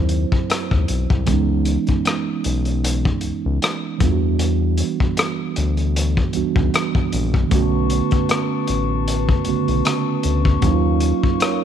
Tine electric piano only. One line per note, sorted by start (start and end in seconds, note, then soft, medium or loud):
0.00 1.30 F#3 medium
0.00 1.29 C4 medium
0.00 1.30 E4 medium
0.00 1.29 C5 medium
1.25 3.95 E3 medium
1.25 3.96 G#3 medium
1.25 3.97 B3 medium
1.31 3.98 C#4 medium
1.31 3.99 D#4 medium
3.98 6.29 E3 medium
3.98 6.30 G3 medium
3.98 6.31 B3 medium
4.04 6.32 D4 medium
4.04 4.10 F4 medium
4.11 6.36 F#4 medium
6.34 7.51 E3 medium
6.34 7.51 G3 medium
6.34 7.50 B3 medium
6.34 7.52 D4 medium
6.34 7.52 F#4 medium
7.48 9.41 D3 medium
7.48 9.41 A3 medium
7.48 9.42 B3 medium
7.53 9.43 C#4 medium
7.53 9.44 F#4 medium
9.45 9.53 C#3 soft
9.45 10.63 A3 medium
9.45 10.63 B3 medium
9.45 10.63 C#4 soft
9.45 10.64 F#4 medium
9.51 10.66 D3 medium
10.61 11.64 F#3 medium
10.61 11.64 A#3 medium
10.61 11.64 C#4 medium
10.66 11.41 D#4 medium
10.66 10.73 E4 medium
10.74 11.45 F4 medium
11.42 11.62 A#4 medium
11.42 11.62 C#5 medium